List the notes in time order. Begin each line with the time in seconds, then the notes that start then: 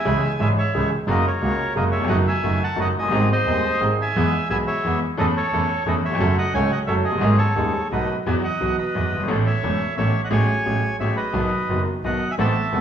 Already playing: E5 G#5
0.05 C#2 C#3 E3 G#3 C#4 E4 G#4
0.39 G#1 G#2 E3 G#3 C#4 E4 G#4 E5 G#5
0.58 C#5 E5
0.74 C#2 C#3 E3 G#3 C#4 E4 G#4
1.07 F#1 F#2 C#3 F#3 G#3 A#3 F#4 G#4 A#4 D#5
1.27 A#4 C#5
1.41 C#2 C#3 G#3 A#3 F#4 G#4
1.75 F#1 F#2 C#3 F#3 G#3 A#3 F#4 G#4 A#4 D#5
1.91 C#5 E5
1.96 D#2
2.00 E2 F2
2.08 F#1 F#2 D#3 F#3 A3 D#4 F#4 D#5 F#5
2.27 E5 G#5
2.43 F#1 F#2 D#3 F#3 A3 D#4 F#4
2.64 F#5 A5
2.76 F#1 F#2 D#3 F#3 A3 D#4 F#4
2.81 D#5 F#5
2.94 F#1
2.98 F1 D#5 G#5
3.03 F#1
3.08 G1 G#1 G#2 D#3 G#3 C4 G#4
3.13 C4 D#4 G#4
3.32 C5 D#5
3.45 D#1 D#2 D#3 G#3 C4 D#4 G#4
3.80 G#1 G#2 D#3 G#3 C4 D#4 G#4
4.02 E5 G#5
4.16 E2 E3 G#3 B3 E4 G#4
4.50 B1 B2 E3 G#3 B3 E4 G#4 E5 G#5
4.67 C#5 E5
4.85 E2 E3 G#3 B3 E4 G#4
5.17 E2 E3 A3 C#4 E4 A4 D#5
5.37 A4 C#5
5.52 E2 E3 A3 C#4 E4 A4
5.86 E2 E3 A3 C#4 E4 A4 D#5
6.05 D#2 C#5 E5
6.11 E2 F2
6.20 F#1 F#2 F#3 A3 C#4 F#4 A4
6.38 D#5 F#5
6.53 C#2 C#3 F#3 A3 C#4 F#4 A4 C#5 G#5
6.71 D#5 F#5
6.87 F#1 F#2 F#3 A3 C#4 F#4 A4 C#5 E5
7.05 F#1 G#4 D#5
7.09 F1 F#1
7.18 G1 G#1 G#2 D#3 G#3 C#4 G#4
7.23 C#4 D#4 G#4
7.38 A4 C#5
7.56 D#1 D#2 D#3 G#3 C#4 D#4 G#4
7.91 B1 B2 D#3 A3 B3 D#4 F#4 A4 B4 D#5
8.26 E2 E3 F#3 B3 F#4 E5 G#5
8.44 D#5 F#5
8.61 B1 B2 E3 F#3 B3 F#4
8.78 B4 D#5
8.95 E2 E3 F#3 B3 F#4
9.13 F#1 G1
9.20 G1 G#1
9.28 A1 A2 E3 A3 C#4 A4 C#5
9.47 C#5 E5
9.64 E1 E2 E3 A3 C#4 A4
9.97 A1 A2 E3 A3 C#4 A4 C#5 E5
10.25 D#5 F#5
10.31 A1 A2 F#3 A3 C#4 G#4 C#5 G#5
10.66 A1 A2 F#3 A3 C#4 G#4
11.00 A1 A2 F#3 A3 C#4 G#4 C#5 E5
11.17 B4 D#5
11.33 B1 B2 D#3 F#3 B3 F#4
11.68 F#1 F#2 D#3 F#3 B3 F#4
12.03 B1 B2 D#3 F#3 B3 F#4 D#5 F#5
12.31 E5 G#5
12.38 A1 A2 E3 B3 C4 A4 E5 A5
12.72 E1 E2 E3 B3 C4 A4